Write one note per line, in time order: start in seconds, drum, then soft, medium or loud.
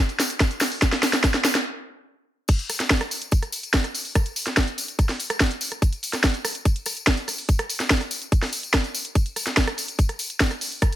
0.09 closed hi-hat soft
0.09 tambourine soft
0.20 snare medium
0.20 open hi-hat loud
0.20 tambourine loud
0.30 closed hi-hat medium
0.30 tambourine soft
0.40 kick loud
0.40 snare medium
0.40 closed hi-hat medium
0.40 tambourine soft
0.51 closed hi-hat medium
0.51 tambourine soft
0.60 snare medium
0.60 open hi-hat loud
0.60 tambourine loud
0.71 open hi-hat medium
0.71 tambourine soft
0.82 kick loud
0.82 snare medium
0.82 closed hi-hat medium
0.82 tambourine medium
0.92 snare medium
0.92 closed hi-hat medium
0.92 tambourine soft
1.03 snare loud
1.03 open hi-hat loud
1.03 tambourine medium
1.13 snare medium
1.13 closed hi-hat medium
1.13 tambourine soft
1.24 kick loud
1.24 snare loud
1.24 closed hi-hat medium
1.24 tambourine medium
1.34 snare medium
1.34 closed hi-hat soft
1.34 tambourine soft
1.45 snare loud
1.45 open hi-hat loud
1.45 tambourine loud
1.55 snare medium
1.55 closed hi-hat soft
1.55 tambourine soft
2.48 kick loud
2.48 closed hi-hat medium
2.48 crash loud
2.48 tambourine medium
2.59 closed hi-hat medium
2.59 tambourine soft
2.69 cross-stick soft
2.69 open hi-hat loud
2.69 tambourine medium
2.80 snare soft
2.80 closed hi-hat medium
2.80 tambourine soft
2.90 kick loud
2.90 snare loud
2.90 closed hi-hat medium
2.90 tambourine medium
3.01 cross-stick medium
3.01 closed hi-hat medium
3.01 tambourine soft
3.11 open hi-hat loud
3.11 tambourine medium
3.21 closed hi-hat medium
3.21 tambourine soft
3.31 kick loud
3.31 closed hi-hat medium
3.31 tambourine medium
3.42 cross-stick soft
3.42 closed hi-hat medium
3.42 tambourine soft
3.52 open hi-hat loud
3.52 tambourine loud
3.63 closed hi-hat medium
3.63 tambourine soft
3.74 kick loud
3.74 snare loud
3.74 closed hi-hat medium
3.74 tambourine medium
3.84 cross-stick soft
3.84 closed hi-hat medium
3.84 tambourine soft
3.95 open hi-hat loud
3.95 tambourine loud
4.05 open hi-hat medium
4.05 tambourine soft
4.15 kick loud
4.15 cross-stick medium
4.15 closed hi-hat medium
4.15 tambourine medium
4.26 closed hi-hat medium
4.26 tambourine soft
4.36 open hi-hat loud
4.36 tambourine loud
4.46 snare soft
4.46 closed hi-hat medium
4.46 tambourine soft
4.57 kick loud
4.57 cross-stick soft
4.57 snare loud
4.57 closed hi-hat medium
4.57 tambourine medium
4.67 closed hi-hat medium
4.67 tambourine soft
4.78 open hi-hat loud
4.78 tambourine loud
4.88 closed hi-hat medium
4.88 tambourine soft
4.99 kick loud
4.99 cross-stick soft
4.99 closed hi-hat medium
4.99 tambourine medium
5.08 snare soft
5.08 open hi-hat medium
5.08 tambourine soft
5.20 open hi-hat loud
5.20 tambourine loud
5.30 cross-stick medium
5.30 closed hi-hat medium
5.30 tambourine soft
5.40 kick loud
5.40 snare loud
5.40 closed hi-hat medium
5.40 tambourine medium
5.51 closed hi-hat medium
5.51 tambourine soft
5.61 open hi-hat loud
5.61 tambourine loud
5.72 cross-stick soft
5.72 closed hi-hat medium
5.72 tambourine soft
5.82 kick loud
5.82 closed hi-hat medium
5.82 tambourine medium
5.93 closed hi-hat soft
5.93 tambourine soft
6.03 open hi-hat loud
6.03 tambourine loud
6.13 cross-stick soft
6.13 snare soft
6.13 closed hi-hat medium
6.13 tambourine soft
6.24 kick loud
6.24 snare loud
6.24 closed hi-hat medium
6.24 tambourine medium
6.34 closed hi-hat medium
6.34 tambourine soft
6.45 cross-stick medium
6.45 open hi-hat loud
6.45 tambourine loud
6.55 closed hi-hat medium
6.55 tambourine soft
6.65 kick loud
6.65 closed hi-hat medium
6.65 tambourine medium
6.76 closed hi-hat medium
6.76 tambourine soft
6.86 cross-stick soft
6.86 open hi-hat loud
6.86 tambourine loud
6.96 closed hi-hat medium
6.96 tambourine soft
7.07 kick loud
7.07 snare loud
7.07 closed hi-hat medium
7.07 tambourine medium
7.17 closed hi-hat medium
7.17 tambourine soft
7.28 cross-stick soft
7.28 open hi-hat loud
7.28 tambourine medium
7.38 open hi-hat medium
7.38 tambourine soft
7.49 kick loud
7.49 closed hi-hat medium
7.49 tambourine medium
7.58 cross-stick medium
7.58 closed hi-hat medium
7.58 tambourine soft
7.70 open hi-hat loud
7.70 tambourine loud
7.80 snare soft
7.80 closed hi-hat medium
7.80 tambourine soft
7.90 kick loud
7.90 snare loud
7.90 closed hi-hat medium
7.90 tambourine medium
8.00 cross-stick soft
8.00 closed hi-hat medium
8.00 tambourine soft
8.11 open hi-hat loud
8.11 tambourine loud
8.22 closed hi-hat medium
8.22 tambourine soft
8.32 kick loud
8.32 closed hi-hat medium
8.32 tambourine medium
8.42 cross-stick soft
8.42 snare soft
8.42 open hi-hat medium
8.42 tambourine soft
8.53 open hi-hat loud
8.53 tambourine loud
8.63 closed hi-hat medium
8.63 tambourine soft
8.74 kick loud
8.74 cross-stick medium
8.74 snare loud
8.74 closed hi-hat medium
8.74 tambourine medium
8.84 closed hi-hat medium
8.84 tambourine soft
8.95 open hi-hat loud
8.95 tambourine loud
9.05 closed hi-hat medium
9.05 tambourine soft
9.15 kick loud
9.15 closed hi-hat medium
9.15 tambourine soft
9.26 closed hi-hat soft
9.26 tambourine soft
9.36 cross-stick soft
9.36 open hi-hat loud
9.36 tambourine medium
9.47 snare soft
9.47 closed hi-hat medium
9.47 tambourine soft
9.57 kick loud
9.57 snare loud
9.57 closed hi-hat medium
9.57 tambourine medium
9.67 cross-stick medium
9.67 closed hi-hat medium
9.67 tambourine soft
9.78 open hi-hat loud
9.78 tambourine medium
9.88 closed hi-hat medium
9.88 tambourine soft
9.99 kick loud
9.99 closed hi-hat medium
9.99 tambourine medium
10.09 cross-stick soft
10.09 closed hi-hat medium
10.09 tambourine soft
10.19 open hi-hat loud
10.19 tambourine loud
10.30 closed hi-hat medium
10.30 tambourine soft
10.40 kick loud
10.40 snare loud
10.40 closed hi-hat medium
10.40 tambourine medium
10.51 cross-stick soft
10.51 closed hi-hat medium
10.51 tambourine soft
10.61 open hi-hat loud
10.61 tambourine medium
10.72 open hi-hat medium
10.72 tambourine soft
10.82 kick loud
10.82 cross-stick medium
10.82 closed hi-hat medium
10.82 tambourine soft
10.92 closed hi-hat medium
10.92 tambourine soft